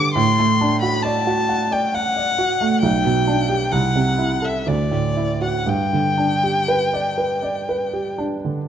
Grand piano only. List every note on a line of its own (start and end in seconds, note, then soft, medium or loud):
0.00 0.13 G2 soft
0.00 0.17 D3 soft
0.00 0.19 G4 soft
0.00 0.19 B4 soft
0.00 0.19 D5 soft
0.00 0.19 G5 soft
0.15 2.78 A2 soft
0.39 0.74 A3 soft
0.61 0.96 D4 soft
0.82 1.18 F#4 soft
1.04 1.40 D5 soft
1.27 1.63 F#4 soft
1.49 1.85 F#5 soft
1.71 2.07 D5 soft
1.94 2.30 F#5 soft
2.16 2.52 D5 soft
2.38 2.74 F#4 soft
2.61 2.83 A3 soft
2.83 3.71 B1 soft
3.05 3.41 B2 soft
3.28 3.64 D4 soft
3.49 3.73 G4 soft
3.72 4.65 C2 soft
3.95 4.34 C3 soft
4.18 4.58 E4 soft
4.42 4.67 A4 soft
4.66 5.64 D2 soft
4.91 5.32 A2 soft
5.17 5.58 E4 soft
5.41 5.67 F#4 soft
5.66 8.63 G2 soft
5.93 6.34 D3 soft
6.18 6.59 D4 soft
6.44 6.84 G4 soft
6.68 7.08 B4 soft
6.93 7.33 D5 soft
7.18 7.58 B4 soft
7.42 7.83 D5 soft
7.69 8.09 B4 soft
7.93 8.34 G4 soft
8.18 8.58 D4 soft
8.44 8.68 D3 soft